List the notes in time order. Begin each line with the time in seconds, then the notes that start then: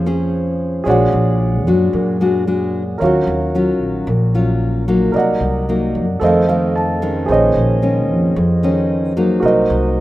Already playing: F2 F3 G#4 C5 F5
0.06 C#4 G#4 C5
0.84 A#1 A#2 G#3 D4 F#4 G#4 C#5
0.88 D5 F#5
1.12 A#1
1.66 F#2 G#3 D4 F#4
1.93 F#2 A#2
2.21 G#3 D4 F#4
2.47 G#3 D4 F#4
2.98 D#2 D#3 F#3 C#4 A#4 C#5
3.02 F4 F#4 F5
3.27 D#2
3.55 F#3 C#4 F4
3.80 A#1
4.07 A#1 A#2
4.35 F#3 C#4 F4
4.88 F#3 A#3 D#4
5.12 C2 C3 A#4 D5
5.16 D#5 F#5
5.40 C2
5.69 F#3 A#3 D#4
5.95 F#2
6.20 F2 D#3 A3 C4 A4 C5
6.24 D#5 F5
6.49 D#3 A3 C4 F5
6.76 A5
7.02 D#3 G#3 C#4
7.26 A#1 A#2 G#4 C5
7.30 C#5 D#5
7.56 A#1
7.82 D#3 G#3 C#4
8.09 F2
8.36 F2
8.63 D#3 G#3 C#4
9.17 F#3 A#3 D#4
9.40 C2 C3 F#4 A#4
9.44 C5 D#5
9.70 C2